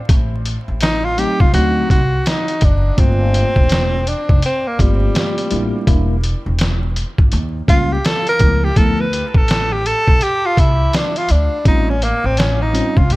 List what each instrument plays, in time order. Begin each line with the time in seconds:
0.09 upright bass A1, kick, closed hi-hat
0.45 closed hi-hat
0.68 upright bass A1
0.81 tenor saxophone D#4, snare, closed hi-hat
1.05 tenor saxophone F4
1.17 tine electric piano F#3 A3 C4 D#4, tenor saxophone G4, closed hi-hat
1.40 upright bass C2, tenor saxophone F4, kick
1.52 upright bass D2, tine electric piano F#3 A3 C4 D#4, tenor saxophone F#4, closed hi-hat
1.90 upright bass C2, tenor saxophone F#4, kick, closed hi-hat
2.26 tenor saxophone D#4, snare, closed hi-hat
2.48 closed hi-hat
2.61 upright bass F#1, tenor saxophone D4, kick, closed hi-hat
2.97 upright bass G1, tine electric piano A3 A#3 C4 F4, tenor saxophone C4, kick, closed hi-hat
3.34 closed hi-hat
3.56 upright bass E1, kick
3.69 snare, closed hi-hat
4.07 tenor saxophone D4, closed hi-hat
4.29 upright bass F1, kick
4.42 tenor saxophone C4, closed hi-hat
4.67 tenor saxophone A#3
4.79 upright bass G1, tenor saxophone G3, tine electric piano A3 A#3 C4 F4, kick, closed hi-hat
5.15 snare, closed hi-hat
5.38 closed hi-hat
5.50 upright bass A1, tine electric piano G3 A#3 D4 E4, closed hi-hat
5.87 upright bass E1, tine electric piano G3 A#3 D4 E4, kick, closed hi-hat
6.24 closed hi-hat
6.46 upright bass E1
6.59 snare, closed hi-hat
6.96 closed hi-hat
7.18 upright bass G1, kick
7.32 upright bass D#2, closed hi-hat
7.67 upright bass C#2, tine electric piano G3 A#3 C#4 F4, tenor saxophone F4, kick, closed hi-hat
7.92 tenor saxophone G4
8.05 tenor saxophone A4, snare, closed hi-hat
8.27 tenor saxophone A#4, closed hi-hat
8.39 upright bass C#2, tine electric piano F3 A3 B3 E4, kick, closed hi-hat
8.64 tenor saxophone G4
8.76 upright bass D2, tine electric piano F3 A3 B3 E4, tenor saxophone A4, kick, closed hi-hat
9.00 tenor saxophone B4
9.13 closed hi-hat
9.28 tenor saxophone B4
9.34 upright bass A1, tenor saxophone A4, kick
9.48 snare, closed hi-hat
9.73 tenor saxophone G4
9.86 tenor saxophone A4, closed hi-hat
10.08 upright bass B1, kick
10.21 tenor saxophone G4, closed hi-hat
10.46 tenor saxophone F4
10.57 upright bass C2, tenor saxophone E4, kick, closed hi-hat
10.93 tenor saxophone D4, snare, closed hi-hat
11.16 tenor saxophone F4, closed hi-hat
11.29 upright bass D2, tenor saxophone D4, closed hi-hat
11.65 upright bass A1, tine electric piano G3 C4 C#4 F4, tenor saxophone D#4, kick, closed hi-hat
11.90 tenor saxophone C#4
12.02 tenor saxophone A#3, closed hi-hat
12.24 upright bass A1, tenor saxophone C4
12.37 tenor saxophone C#4, snare, closed hi-hat
12.62 tenor saxophone D#4
12.73 tine electric piano G3 C4 C#4 F4, closed hi-hat
12.97 upright bass C2, tenor saxophone F4, kick
13.10 upright bass A2, tenor saxophone G4, closed hi-hat